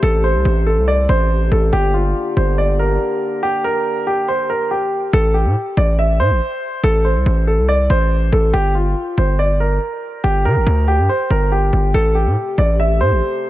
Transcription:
Already playing: C3 A3 G4
0.03 A1 A4
0.24 C5
0.34 C2
0.45 A1
0.67 A4
0.77 C2
0.88 D5
1.09 A1 C5
1.51 A1 A4
1.73 G1 D3 A#3 G4
1.94 F4
2.37 G1 C5
2.58 D5
2.79 A#4
3.43 G4
3.64 A#4
4.07 G4
4.28 C5
4.50 A#4
4.71 G4
5.13 A1 A4
5.34 G4
5.45 A2
5.77 A1 D5
5.99 E5
6.20 A2 C5
6.30 A1
6.83 A1 A4
7.05 C5
7.15 C2
7.26 A1
7.47 A4
7.58 C2
7.69 D5
7.90 A1 C5
8.32 A1 A4
8.53 G1 G4
8.75 F4
9.18 G1 C5
9.39 D5
9.60 A#4
10.24 G1 G4
10.45 D3 A#4
10.56 G1
10.67 D2
10.88 G4
10.98 G2
11.09 C5
11.30 G1 A#4
11.52 G4
11.73 G1
11.94 A1 C3 A3 G4 A4
12.15 G4
12.26 A2
12.58 A1 D5
12.80 E5
13.01 A2 C5
13.11 A1

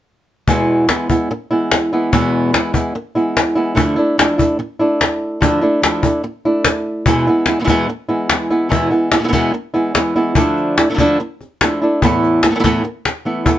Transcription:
0.48 E2 B2 E3 G#3 B3 E4, cajon bass
0.88 E3 G#3 B3 E4, cajon slap
1.10 E3 G#3 B3 E4, cajon bass
1.31 muted nylon-string guitar stroke
1.51 E3 G#3 B3 E4
1.71 cajon slap
1.93 E3 G#3 B3 E4
2.12 E2 B2 E3 G#3 B3 E4, cajon bass
2.53 E3 G#3 B3 E4, cajon slap
2.74 E3 G#3 B3 E4, cajon bass
2.95 muted nylon-string guitar stroke
3.15 E3 G#3 B3 E4, cajon slap
3.37 cajon slap
3.55 E3 G#3 B3 E4
3.75 D3 F3 A3 D4 E4, cajon bass
3.96 A3 D4 E4, cajon slap
4.18 F3 A3 D4 E4, cajon slap
4.38 A3 D4 E4, cajon bass
4.59 muted nylon-string guitar stroke
4.79 A3 D4 E4
5.01 cajon slap
5.41 D3 F3 A3 D4 E4, cajon bass
5.61 A3 D4 E4, cajon slap
5.82 F3 A3 D4 E4, cajon slap
6.02 A3 D4 E4, cajon bass
6.24 muted nylon-string guitar stroke
6.45 A3 D4 E4, cajon slap
6.65 cajon slap
7.06 E2 B2 E3 G#3 B3 E4, cajon bass
7.27 E3 G#3 B3 E4, cajon slap
7.46 G#3 B3 E4, cajon slap
7.50 E3
7.60 B2 E3 G#3 B3 E4
7.64 B2 E3 G#3 B3 E4, cajon bass
7.69 E2 B2 E3 G#3 B3 E4
7.89 muted nylon-string guitar stroke
8.09 E3 G#3 B3 E4
8.29 E3 G#3 B3 E4, cajon slap
8.50 E3 G#3 B3 E4, cajon slap
8.69 E2 B2 E3 G#3 B3 E4, cajon bass
8.90 E3 G#3 B3 E4, cajon slap
9.12 E3 G#3 B3 E4, cajon slap
9.19 B2 E3 G#3 B3 E4
9.23 B2 E3 G#3 B3 E4
9.28 B2 E3 G#3 B3 E4
9.32 E2 B2 E3 G#3 B3 E4, cajon bass
9.54 muted nylon-string guitar stroke
9.74 E3 G#3 B3 E4, cajon slap
9.94 E3 G#3 B3 E4, cajon slap
10.16 E3 G#3 B3 E4, cajon slap
10.35 D3 F3 A3 D4 E4, cajon bass
10.57 cajon slap
10.77 A3 D4 E4, cajon slap
10.90 F3 A3 D4 E4
10.94 F3 A3 D4 E4
10.98 D3 F3 A3 D4 E4, cajon bass
11.20 muted nylon-string guitar stroke
11.41 cajon slap
11.61 F3 A3 D4 E4, cajon slap
11.82 A3 D4 E4
12.02 E2 A2 E3 A3 B3 E4, cajon bass
12.23 cajon slap
12.43 E3 A3 B3 E4, cajon slap
12.50 A2 E3 A3 B3 E4
12.55 A2 E3 A3 B3 E4
12.59 A2 E3 A3 B3 E4
12.64 E2 A2 E3 A3 B3 E4, cajon bass
12.84 muted nylon-string guitar stroke
13.05 cajon slap
13.25 E3 A3 B3 E4
13.46 E3 A3 B3 E4, cajon bass

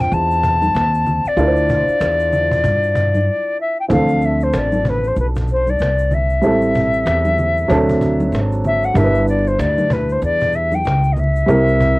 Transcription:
Already playing: C4 D4 F4 C5
0.01 G5
0.12 E2 A5, cajon slap, shaker
0.31 shaker
0.43 cajon bass, cajon slap, shaker
0.62 high conga, shaker
0.75 D#2, cajon slap, shaker
0.94 shaker
1.06 cajon slap, low conga, shaker
1.25 D5, muted upright bass stroke, shaker
1.37 D2 D4 E4 F4 A#4, cajon slap, shaker
1.47 C5
1.56 shaker
1.69 cajon bass, shaker
1.88 muted upright bass stroke, shaker
2.00 E2, cajon slap, shaker
2.20 shaker
2.33 cajon slap, low conga, shaker
2.51 cajon bass, shaker
2.64 G2, cajon bass, shaker
2.83 shaker
2.95 cajon bass, cajon slap, shaker
3.15 high conga, shaker
3.61 E5
3.80 G5
3.88 D2 E3 C4 D4 A4 F5, cajon bass, shaker
3.95 F3
4.08 cajon slap, shaker
4.22 E5, cajon slap, shaker
4.41 C5, shaker
4.53 A1 D5, cajon slap, shaker
4.72 high conga, shaker
4.84 cajon bass, low conga, shaker
4.89 B4
5.03 cajon slap, shaker
5.07 C5
5.16 B1 B4, cajon slap, shaker
5.35 cajon bass, shaker
5.48 C5, cajon slap, shaker
5.67 D5, high conga, shaker
5.79 C2, cajon slap, shaker
5.98 shaker
6.11 E5, cajon slap, low conga, shaker
6.30 shaker
6.41 A1 G3 C4 E4 A4, cajon slap, shaker
6.62 cajon slap, shaker
6.74 cajon bass, shaker
6.93 shaker
7.06 E2, cajon slap, shaker
7.25 high conga, shaker
7.38 cajon slap, low conga, shaker
7.56 cajon slap, shaker
7.68 D2 F#3 C4 D4 A4, cajon bass, shaker
7.89 cajon bass, shaker
8.01 cajon bass, cajon slap, shaker
8.20 high conga, shaker
8.32 G#1, cajon slap, shaker
8.52 shaker
8.65 E5, cajon slap, low conga, shaker
8.83 F#5, shaker
8.94 G1 G3 D4 E4 A#4 E5, cajon bass, shaker
9.04 B4
9.15 shaker
9.27 D5, cajon slap, shaker
9.47 C5, shaker
9.59 D2 D5, cajon slap, shaker
9.78 high conga, shaker
9.90 B4, cajon bass, low conga, shaker
10.08 C5, cajon slap, shaker
10.22 E2 D5, cajon slap, shaker
10.40 cajon bass, shaker
10.53 E5, cajon slap, shaker
10.72 G5, high conga, shaker
10.84 C#2, cajon slap, shaker
11.04 shaker
11.12 D#5
11.16 E5, cajon slap, low conga, shaker
11.36 shaker
11.46 C2 G3 C4 E4 A#4, cajon slap, shaker
11.67 cajon slap, shaker
11.80 cajon bass, shaker

